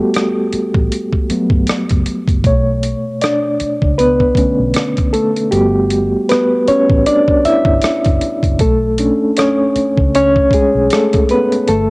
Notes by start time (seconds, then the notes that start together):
Already playing: G3 A3 B3 F#4 G4 A4
0.14 cross-stick, closed hi-hat
0.52 muted fingered electric bass stroke, closed hi-hat
0.74 A1, kick
0.92 closed hi-hat
1.13 kick
1.30 F#3 A3 B3, muted fingered electric bass stroke, closed hi-hat
1.50 G1, kick
1.67 cross-stick, closed hi-hat
1.89 F#1, kick, closed hi-hat
2.06 closed hi-hat
2.28 F#1, kick, closed hi-hat
2.44 B1 B2 A3 C#5, kick, closed hi-hat
2.83 closed hi-hat
3.22 D4 D5, cross-stick, closed hi-hat
3.60 muted fingered electric bass stroke, closed hi-hat
3.82 C#2, kick
3.98 B3 B4, closed hi-hat
4.20 kick
4.35 D3 A3 C#4, muted fingered electric bass stroke, kick, closed hi-hat
4.60 B1
4.74 cross-stick, closed hi-hat
4.97 kick, closed hi-hat
5.13 A3 A4, closed hi-hat
5.36 closed hi-hat
5.51 G1 G3 A3 B3 F#4 G4, closed hi-hat
5.90 closed hi-hat
6.29 B3 B4, cross-stick, closed hi-hat
6.68 C#4 C#5, muted fingered electric bass stroke, closed hi-hat
6.90 A1, kick
7.06 D4 D5, closed hi-hat
7.28 kick
7.45 E4 E5, muted fingered electric bass stroke, closed hi-hat
7.65 G1, kick
7.82 muted fingered electric bass stroke, cross-stick, closed hi-hat
8.05 F#1, kick, closed hi-hat
8.21 closed hi-hat
8.43 F#1, kick, closed hi-hat
8.59 B1 A3 A4, kick, closed hi-hat
8.98 A3 C#4 D4, closed hi-hat
9.37 C#4 C#5, cross-stick, closed hi-hat
9.76 muted fingered electric bass stroke, closed hi-hat
9.98 C#2, kick
10.15 C#4 C#5, closed hi-hat
10.36 kick
10.51 G#4, muted fingered electric bass stroke, kick, closed hi-hat
10.55 G#3
10.75 B1
10.90 A3 A4, cross-stick, closed hi-hat
11.13 kick, closed hi-hat
11.29 B3 B4, closed hi-hat
11.52 closed hi-hat
11.68 G1 A3 A4, closed hi-hat